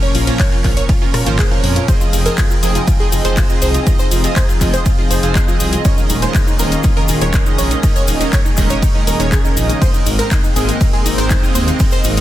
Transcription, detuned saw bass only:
0, 0, Header, 1, 2, 480
1, 0, Start_track
1, 0, Key_signature, -4, "minor"
1, 0, Tempo, 495868
1, 1823, Time_signature, 4, 2, 24, 8
1, 11816, End_track
2, 0, Start_track
2, 0, Title_t, "Detuned saw bass"
2, 0, Program_c, 0, 39
2, 142, Note_on_c, 0, 34, 95
2, 292, Note_off_c, 0, 34, 0
2, 623, Note_on_c, 0, 34, 97
2, 772, Note_off_c, 0, 34, 0
2, 1102, Note_on_c, 0, 46, 94
2, 1178, Note_off_c, 0, 46, 0
2, 1223, Note_on_c, 0, 32, 100
2, 1372, Note_off_c, 0, 32, 0
2, 1582, Note_on_c, 0, 41, 96
2, 1732, Note_off_c, 0, 41, 0
2, 2062, Note_on_c, 0, 29, 105
2, 2212, Note_off_c, 0, 29, 0
2, 2543, Note_on_c, 0, 29, 98
2, 2693, Note_off_c, 0, 29, 0
2, 3023, Note_on_c, 0, 29, 89
2, 3098, Note_off_c, 0, 29, 0
2, 3144, Note_on_c, 0, 29, 107
2, 3292, Note_off_c, 0, 29, 0
2, 3502, Note_on_c, 0, 36, 83
2, 3652, Note_off_c, 0, 36, 0
2, 3983, Note_on_c, 0, 29, 98
2, 4133, Note_off_c, 0, 29, 0
2, 4462, Note_on_c, 0, 29, 100
2, 4612, Note_off_c, 0, 29, 0
2, 4942, Note_on_c, 0, 29, 88
2, 5018, Note_off_c, 0, 29, 0
2, 5063, Note_on_c, 0, 29, 100
2, 5211, Note_off_c, 0, 29, 0
2, 5423, Note_on_c, 0, 36, 88
2, 5573, Note_off_c, 0, 36, 0
2, 5904, Note_on_c, 0, 27, 98
2, 6053, Note_off_c, 0, 27, 0
2, 6383, Note_on_c, 0, 27, 98
2, 6533, Note_off_c, 0, 27, 0
2, 6862, Note_on_c, 0, 27, 89
2, 6938, Note_off_c, 0, 27, 0
2, 6984, Note_on_c, 0, 27, 107
2, 7132, Note_off_c, 0, 27, 0
2, 7342, Note_on_c, 0, 34, 86
2, 7492, Note_off_c, 0, 34, 0
2, 7821, Note_on_c, 0, 27, 100
2, 7972, Note_off_c, 0, 27, 0
2, 8302, Note_on_c, 0, 27, 97
2, 8452, Note_off_c, 0, 27, 0
2, 8781, Note_on_c, 0, 27, 90
2, 8857, Note_off_c, 0, 27, 0
2, 8902, Note_on_c, 0, 27, 102
2, 9051, Note_off_c, 0, 27, 0
2, 9262, Note_on_c, 0, 34, 84
2, 9412, Note_off_c, 0, 34, 0
2, 9741, Note_on_c, 0, 32, 101
2, 9892, Note_off_c, 0, 32, 0
2, 10221, Note_on_c, 0, 32, 96
2, 10372, Note_off_c, 0, 32, 0
2, 10702, Note_on_c, 0, 32, 92
2, 10777, Note_off_c, 0, 32, 0
2, 10823, Note_on_c, 0, 32, 105
2, 10971, Note_off_c, 0, 32, 0
2, 11183, Note_on_c, 0, 39, 82
2, 11332, Note_off_c, 0, 39, 0
2, 11663, Note_on_c, 0, 32, 105
2, 11812, Note_off_c, 0, 32, 0
2, 11816, End_track
0, 0, End_of_file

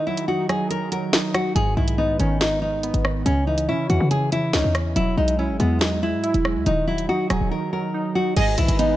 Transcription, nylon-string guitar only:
0, 0, Header, 1, 2, 480
1, 0, Start_track
1, 0, Tempo, 425532
1, 1756, Time_signature, 4, 2, 24, 8
1, 10113, End_track
2, 0, Start_track
2, 0, Title_t, "Nylon-string guitar"
2, 0, Program_c, 0, 24
2, 76, Note_on_c, 0, 64, 83
2, 288, Note_off_c, 0, 64, 0
2, 315, Note_on_c, 0, 66, 88
2, 527, Note_off_c, 0, 66, 0
2, 555, Note_on_c, 0, 68, 82
2, 767, Note_off_c, 0, 68, 0
2, 796, Note_on_c, 0, 70, 83
2, 1007, Note_off_c, 0, 70, 0
2, 1036, Note_on_c, 0, 70, 78
2, 1487, Note_off_c, 0, 70, 0
2, 1515, Note_on_c, 0, 66, 84
2, 1727, Note_off_c, 0, 66, 0
2, 1754, Note_on_c, 0, 68, 97
2, 1967, Note_off_c, 0, 68, 0
2, 1996, Note_on_c, 0, 64, 85
2, 2207, Note_off_c, 0, 64, 0
2, 2235, Note_on_c, 0, 63, 80
2, 2447, Note_off_c, 0, 63, 0
2, 2479, Note_on_c, 0, 61, 73
2, 2689, Note_off_c, 0, 61, 0
2, 2715, Note_on_c, 0, 63, 91
2, 2927, Note_off_c, 0, 63, 0
2, 2953, Note_on_c, 0, 63, 77
2, 3631, Note_off_c, 0, 63, 0
2, 3675, Note_on_c, 0, 61, 87
2, 3887, Note_off_c, 0, 61, 0
2, 3915, Note_on_c, 0, 63, 73
2, 4127, Note_off_c, 0, 63, 0
2, 4158, Note_on_c, 0, 64, 77
2, 4369, Note_off_c, 0, 64, 0
2, 4395, Note_on_c, 0, 66, 80
2, 4607, Note_off_c, 0, 66, 0
2, 4636, Note_on_c, 0, 68, 76
2, 4847, Note_off_c, 0, 68, 0
2, 4877, Note_on_c, 0, 64, 83
2, 5088, Note_off_c, 0, 64, 0
2, 5118, Note_on_c, 0, 63, 86
2, 5329, Note_off_c, 0, 63, 0
2, 5597, Note_on_c, 0, 64, 89
2, 5808, Note_off_c, 0, 64, 0
2, 5837, Note_on_c, 0, 63, 82
2, 6048, Note_off_c, 0, 63, 0
2, 6077, Note_on_c, 0, 61, 83
2, 6288, Note_off_c, 0, 61, 0
2, 6316, Note_on_c, 0, 59, 79
2, 6527, Note_off_c, 0, 59, 0
2, 6556, Note_on_c, 0, 63, 84
2, 6768, Note_off_c, 0, 63, 0
2, 6800, Note_on_c, 0, 64, 90
2, 7475, Note_off_c, 0, 64, 0
2, 7517, Note_on_c, 0, 63, 87
2, 7728, Note_off_c, 0, 63, 0
2, 7755, Note_on_c, 0, 64, 83
2, 7967, Note_off_c, 0, 64, 0
2, 7997, Note_on_c, 0, 66, 87
2, 8208, Note_off_c, 0, 66, 0
2, 8236, Note_on_c, 0, 68, 81
2, 8447, Note_off_c, 0, 68, 0
2, 8476, Note_on_c, 0, 70, 82
2, 8688, Note_off_c, 0, 70, 0
2, 8717, Note_on_c, 0, 70, 78
2, 9168, Note_off_c, 0, 70, 0
2, 9197, Note_on_c, 0, 66, 86
2, 9408, Note_off_c, 0, 66, 0
2, 9437, Note_on_c, 0, 68, 98
2, 9648, Note_off_c, 0, 68, 0
2, 9676, Note_on_c, 0, 64, 85
2, 9887, Note_off_c, 0, 64, 0
2, 9916, Note_on_c, 0, 63, 82
2, 10113, Note_off_c, 0, 63, 0
2, 10113, End_track
0, 0, End_of_file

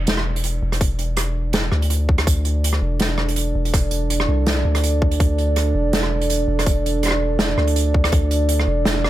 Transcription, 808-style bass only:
0, 0, Header, 1, 2, 480
1, 0, Start_track
1, 0, Tempo, 365854
1, 1061, Time_signature, 4, 2, 24, 8
1, 11938, End_track
2, 0, Start_track
2, 0, Title_t, "808-style bass"
2, 0, Program_c, 0, 38
2, 0, Note_on_c, 0, 28, 93
2, 804, Note_off_c, 0, 28, 0
2, 821, Note_on_c, 0, 28, 94
2, 2244, Note_off_c, 0, 28, 0
2, 2257, Note_on_c, 0, 38, 91
2, 2962, Note_off_c, 0, 38, 0
2, 2978, Note_on_c, 0, 38, 96
2, 3683, Note_off_c, 0, 38, 0
2, 3699, Note_on_c, 0, 28, 97
2, 4643, Note_off_c, 0, 28, 0
2, 4662, Note_on_c, 0, 28, 92
2, 5605, Note_off_c, 0, 28, 0
2, 5624, Note_on_c, 0, 36, 98
2, 6086, Note_off_c, 0, 36, 0
2, 6102, Note_on_c, 0, 38, 90
2, 6804, Note_off_c, 0, 38, 0
2, 6824, Note_on_c, 0, 38, 95
2, 7525, Note_off_c, 0, 38, 0
2, 7541, Note_on_c, 0, 28, 95
2, 8484, Note_off_c, 0, 28, 0
2, 8501, Note_on_c, 0, 28, 96
2, 9924, Note_off_c, 0, 28, 0
2, 9942, Note_on_c, 0, 38, 92
2, 10645, Note_off_c, 0, 38, 0
2, 10662, Note_on_c, 0, 38, 95
2, 11365, Note_off_c, 0, 38, 0
2, 11379, Note_on_c, 0, 28, 97
2, 11938, Note_off_c, 0, 28, 0
2, 11938, End_track
0, 0, End_of_file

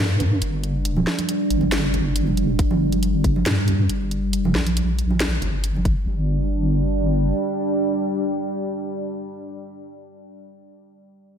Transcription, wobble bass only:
0, 0, Header, 1, 2, 480
1, 0, Start_track
1, 0, Key_signature, -2, "minor"
1, 0, Tempo, 434783
1, 941, Time_signature, 4, 2, 24, 8
1, 12566, End_track
2, 0, Start_track
2, 0, Title_t, "Wobble bass"
2, 0, Program_c, 0, 39
2, 0, Note_on_c, 0, 43, 99
2, 442, Note_off_c, 0, 43, 0
2, 459, Note_on_c, 0, 31, 94
2, 1162, Note_off_c, 0, 31, 0
2, 1660, Note_on_c, 0, 31, 101
2, 2488, Note_off_c, 0, 31, 0
2, 2488, Note_on_c, 0, 30, 101
2, 2731, Note_off_c, 0, 30, 0
2, 2731, Note_on_c, 0, 29, 101
2, 2842, Note_off_c, 0, 29, 0
2, 2859, Note_on_c, 0, 31, 92
2, 3801, Note_off_c, 0, 31, 0
2, 3820, Note_on_c, 0, 43, 97
2, 4282, Note_off_c, 0, 43, 0
2, 4301, Note_on_c, 0, 31, 91
2, 4798, Note_off_c, 0, 31, 0
2, 4798, Note_on_c, 0, 30, 91
2, 5003, Note_off_c, 0, 30, 0
2, 5021, Note_on_c, 0, 34, 97
2, 5963, Note_off_c, 0, 34, 0
2, 5982, Note_on_c, 0, 31, 90
2, 6443, Note_off_c, 0, 31, 0
2, 6460, Note_on_c, 0, 31, 89
2, 6682, Note_off_c, 0, 31, 0
2, 6700, Note_on_c, 0, 31, 97
2, 8096, Note_off_c, 0, 31, 0
2, 12566, End_track
0, 0, End_of_file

